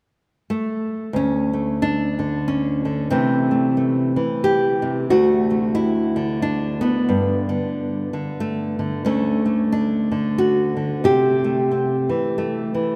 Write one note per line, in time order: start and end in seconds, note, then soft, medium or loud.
0.50 1.17 A3 medium
1.13 3.11 D2 medium
1.13 2.47 C#4 medium
1.53 3.12 A3 soft
1.82 3.13 D4 medium
2.19 2.84 D3 medium
2.48 3.10 C#4 medium
2.85 3.11 D3 soft
3.10 4.17 C3 medium
3.10 4.15 E3 soft
3.10 3.50 A3 soft
3.10 5.09 C4 medium
3.51 3.76 A3 soft
3.77 5.06 A3 soft
4.16 5.06 E3 medium
4.44 5.10 G4 medium
4.82 5.09 C3 medium
5.10 7.08 D2 medium
5.10 6.15 D3 soft
5.10 5.49 A3 soft
5.10 5.74 F#4 medium
5.50 7.05 A3 soft
5.75 6.41 E4 medium
6.16 6.81 D3 medium
6.42 7.08 D4 medium
6.81 7.48 D3 medium
6.81 8.39 B3 medium
7.09 9.03 G2 medium
7.49 8.12 D3 soft
8.13 8.78 D3 medium
8.40 9.05 A3 medium
8.79 9.04 D3 medium
9.05 11.03 D2 medium
9.05 10.10 D3 soft
9.05 9.45 A3 soft
9.05 10.37 C#4 medium
9.46 11.08 A3 soft
9.72 10.38 D4 medium
10.12 10.75 D3 medium
10.38 11.04 F#4 medium
10.77 11.03 D3 soft
11.04 12.09 C3 medium
11.04 12.96 G4 medium
11.44 12.38 A3 soft
11.71 12.36 C4 soft
12.09 12.73 E3 medium
12.38 12.96 A3 medium
12.74 12.96 E3 medium